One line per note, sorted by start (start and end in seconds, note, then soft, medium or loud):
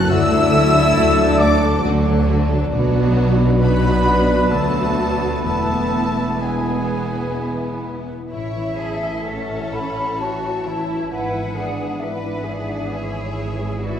0.00 0.13 F#2 medium
0.00 0.13 C#3 medium
0.00 0.10 F#3 medium
0.00 2.69 F#3 medium
0.00 0.30 A3 medium
0.00 0.11 C#4 medium
0.00 0.10 E4 medium
0.00 0.11 E4 medium
0.00 0.13 E4 medium
0.00 0.74 F#4 medium
0.00 0.10 A4 medium
0.00 0.96 A4 medium
0.00 0.13 E5 medium
0.00 1.38 F#5 medium
0.00 0.10 F#6 loud
0.09 0.86 D2 loud
0.09 2.76 D3 medium
0.09 0.87 D3 medium
0.09 0.31 A3 medium
0.09 4.47 D4 medium
0.09 1.40 E4 loud
0.09 0.30 F#4 medium
0.09 2.42 A4 medium
0.09 1.42 E5 loud
0.09 1.39 E6 loud
0.09 1.40 E6 loud
0.31 0.54 F#3 medium
0.31 2.76 A3 medium
0.31 0.53 D4 medium
0.31 0.53 A4 medium
0.53 0.75 A3 medium
0.53 2.49 D4 medium
0.53 0.75 F#4 medium
0.75 0.97 F#3 medium
0.75 0.96 D4 medium
0.75 3.60 F#4 medium
0.75 0.97 A4 medium
0.97 1.73 D2 medium
0.97 1.74 D3 medium
0.97 1.17 A3 medium
0.97 1.17 F#4 medium
0.97 2.26 A4 medium
1.18 1.40 F#3 medium
1.18 1.40 D4 medium
1.18 1.40 A4 medium
1.18 2.05 D5 medium
1.39 1.62 A3 medium
1.39 1.83 D4 medium
1.39 1.62 F#4 medium
1.39 1.84 D5 medium
1.39 1.83 F#5 medium
1.39 1.83 D6 medium
1.62 1.84 F#3 medium
1.62 1.84 D4 medium
1.62 1.84 A4 medium
1.62 2.76 A5 medium
1.83 2.62 D2 medium
1.83 2.63 D3 medium
1.83 2.04 A3 medium
1.83 2.04 F#4 medium
1.83 4.27 F#5 medium
2.05 2.28 F#3 medium
2.05 2.28 D4 medium
2.05 2.28 A4 medium
2.05 4.05 D5 medium
2.27 2.51 A3 medium
2.27 2.50 F#4 medium
2.27 2.76 A4 medium
2.50 2.72 F#3 medium
2.50 2.72 D4 medium
2.50 3.38 D4 medium
2.50 2.72 A4 medium
2.72 4.47 B1 medium
2.72 4.54 B2 medium
2.72 4.47 B2 medium
2.72 5.40 F#3 medium
2.72 3.58 F#3 medium
2.72 3.58 B3 medium
2.72 3.57 D4 medium
2.72 3.57 F#4 medium
2.72 7.94 B4 medium
2.95 5.48 F#3 medium
3.17 4.73 B3 medium
3.39 4.95 D4 medium
3.61 4.49 F#3 medium
3.61 4.49 B3 medium
3.61 4.47 B3 medium
3.61 4.49 D4 medium
3.61 4.49 F#4 medium
3.61 5.19 F#4 medium
3.61 4.47 B4 medium
3.61 4.53 B4 medium
3.61 4.47 B5 medium
4.06 5.48 D5 medium
4.28 5.48 F#5 medium
4.50 5.42 D2 medium
4.50 5.48 D3 medium
4.50 5.42 F#3 medium
4.50 5.42 A3 medium
4.50 5.41 B3 medium
4.50 7.98 B3 medium
4.50 5.42 D4 medium
4.50 5.42 F#4 medium
4.50 5.42 A4 medium
4.50 5.43 A4 medium
4.50 5.43 A5 medium
4.50 5.42 A5 medium
4.74 5.67 B3 soft
4.96 5.47 D4 medium
5.20 5.47 F#4 medium
5.43 8.11 E1 medium
5.43 8.11 E2 medium
5.43 8.35 E3 medium
5.43 7.94 E3 medium
5.43 6.38 A3 medium
5.43 6.39 B3 medium
5.43 6.40 B3 medium
5.43 6.40 E4 medium
5.43 6.43 A4 medium
5.43 6.39 A4 medium
5.43 6.38 A5 medium
5.43 6.39 A5 medium
5.68 6.15 B3 soft
5.92 6.63 E4 soft
6.16 8.06 B3 soft
6.40 7.82 G#3 medium
6.40 8.07 B3 medium
6.40 8.07 E4 medium
6.40 7.83 G#4 soft
6.40 7.80 G#4 medium
6.40 7.57 B4 soft
6.40 7.83 G#5 medium
6.64 7.82 E4 soft
6.88 7.33 E5 soft
7.11 8.35 B5 soft
7.35 11.25 E5 soft
7.59 8.35 B4 soft
7.83 9.27 E4 soft
8.07 8.35 B3 soft
8.30 11.08 A1 medium
8.30 11.16 A2 medium
8.30 13.79 E3 medium
8.30 11.07 C#4 medium
8.30 8.76 E4 medium
8.30 9.23 E4 medium
8.30 8.76 C#5 medium
8.30 9.69 E5 medium
8.30 9.23 E5 medium
8.56 10.65 E3 soft
8.79 10.41 A3 soft
8.79 9.27 G#4 soft
8.79 9.27 A4 medium
9.04 9.49 C#4 soft
9.27 10.20 C#4 medium
9.27 9.73 E4 soft
9.27 10.19 A4 medium
9.27 11.12 C#5 medium
9.27 10.20 F#5 soft
9.51 9.96 C#4 soft
9.72 10.19 E4 soft
9.72 10.19 B5 medium
9.97 11.16 C#4 soft
10.19 11.80 E4 soft
10.19 10.66 F#4 medium
10.19 10.66 F#4 soft
10.19 11.12 E5 soft
10.19 11.12 A5 medium
10.43 10.88 A3 soft
10.66 11.16 E3 soft
10.66 11.12 E4 medium
10.66 11.12 E4 soft
10.89 11.16 A3 soft
11.11 14.00 G#1 medium
11.11 13.83 G#2 medium
11.11 14.00 B3 medium
11.11 11.57 E4 medium
11.11 12.01 B4 soft
11.11 11.57 B4 medium
11.11 12.02 E5 soft
11.11 12.01 F#5 medium
11.36 13.15 G#3 soft
11.58 12.02 B3 soft
11.58 12.91 D4 soft
11.58 12.03 G#4 medium
11.81 12.25 E4 soft
12.02 12.47 B3 soft
12.02 12.47 B4 medium
12.02 12.48 B4 medium
12.02 13.38 E5 medium
12.02 12.92 F#5 soft
12.26 12.70 E4 soft
12.49 12.93 B3 soft
12.49 13.83 G#4 medium
12.49 12.94 D5 soft
12.71 14.00 E4 soft
12.93 13.37 B3 soft
12.93 13.82 E4 soft
12.93 13.83 C#5 soft
12.93 13.83 E5 soft
13.16 13.59 G#3 soft
13.38 14.00 B3 soft
13.61 14.00 G#3 soft
13.82 14.00 G#2 medium
13.82 14.00 E3 medium
13.82 14.00 E4 medium
13.82 14.00 F#4 medium
13.82 14.00 B4 soft
13.82 14.00 D5 medium
13.82 14.00 E5 soft